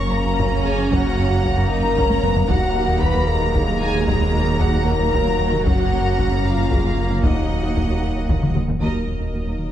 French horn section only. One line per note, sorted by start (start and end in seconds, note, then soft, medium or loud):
0.00 0.13 C#5 medium
0.11 0.65 A#4 medium
0.63 0.90 G#4 medium
0.90 1.70 F#4 medium
1.69 2.47 A#4 loud
2.49 3.02 F#4 medium
3.00 3.28 B4 loud
3.28 3.65 A#4 medium
3.81 4.07 G#4 medium
4.06 4.59 A#4 loud
4.60 4.86 F#4 medium
4.86 5.64 A#4 loud
5.64 6.44 F#4 medium
6.47 7.23 F4 medium
7.24 8.55 D#4 medium